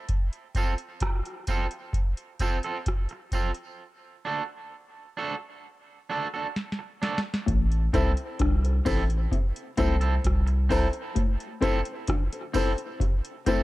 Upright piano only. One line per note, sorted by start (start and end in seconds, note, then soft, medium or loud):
7.93 8.07 C4 medium
7.93 8.07 E4 medium
7.93 8.07 A4 medium
7.93 8.07 C5 loud
8.64 8.73 A4 soft
8.64 8.73 C5 soft
8.85 8.99 C4 medium
8.85 8.99 E4 medium
8.85 9.00 A4 medium
8.85 9.00 C5 loud
9.77 9.91 C4 loud
9.77 9.91 E4 medium
9.77 9.92 A4 medium
9.77 9.92 C5 loud
10.70 10.84 C4 medium
10.70 10.84 E4 medium
10.70 10.84 A4 medium
10.70 10.84 C5 loud
11.61 11.75 C4 loud
11.61 11.75 E4 medium
11.61 11.76 A4 medium
11.61 11.76 C5 loud
12.33 12.42 A4 soft
12.33 12.42 C5 soft
12.55 12.68 C4 medium
12.55 12.68 E4 medium
12.55 12.69 A4 medium
12.55 12.69 C5 loud
13.46 13.60 C4 medium
13.46 13.61 E4 medium
13.46 13.60 A4 medium
13.46 13.61 C5 loud